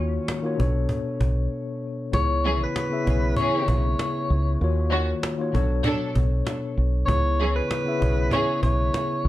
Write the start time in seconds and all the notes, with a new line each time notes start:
Already playing: D#2 D#3 A#3 F4 F#4 C#5
0.28 cajon slap
0.42 D#3 A#3 F4 F#4 C#5
0.56 B1 B2 B3 D4 A4 C#5, cajon bass
0.89 cajon bass
1.21 B1, cajon bass
2.11 C#2 C#3 B3 E4 G#4 C#5, cajon bass
2.44 E3 C#4 G#4, cajon slap
2.63 B4
2.76 cajon slap
2.89 C#3 B3 E4 G#4 E5
3.03 B1 C#3 B3 E4 G#4 C#5, cajon bass
3.36 E3 C#4 G#4 C#5, cajon bass
3.68 B1 C#5, cajon bass
3.99 cajon slap
4.30 C#2, cajon slap
4.60 D#2 D#3 A#3 F4 F#4 C#5, cajon slap
4.91 D#3 C#4 F#4, cajon slap
5.23 cajon slap
5.37 D#3 A#3 F4 F#4 C#5
5.52 B1 B2 B3 D4 A4 C#5, cajon bass
5.84 F#3 D4 A4, cajon bass
6.15 B1, cajon bass
6.47 cajon slap
6.78 B1, cajon slap
7.06 C#2 C#3 B3 E4 G#4 C#5, cajon bass
7.10 C#5
7.39 E3 C#4 G#4, cajon slap
7.56 B4
7.71 cajon slap
7.84 C#3 B3 E4 G#4 E5
7.99 B1 C#3 B3 E4 G#4, cajon bass
8.03 C#5
8.31 E3 C#4 G#4 C#5, cajon bass
8.63 B1 C#5, cajon bass
8.94 cajon slap
9.25 C#2